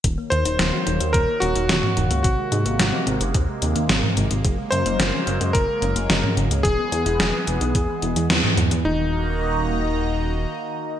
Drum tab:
HH |x-xxx-xxx-xxx-xx|x-xxx-xxx-xxx-xx|x-xxx-xxx-xxx-xx|x-xxx-xxx-xxx-xx|
SD |----o-------o---|----o-------o---|----o-------o---|----o-------o---|
T2 |-------------o--|-------------o--|-------------o--|-------------o--|
BD |o-------o-------|o-------o-------|o-------o-------|o-------o-------|

HH |----------------|
SD |----------------|
T2 |----------------|
BD |----------------|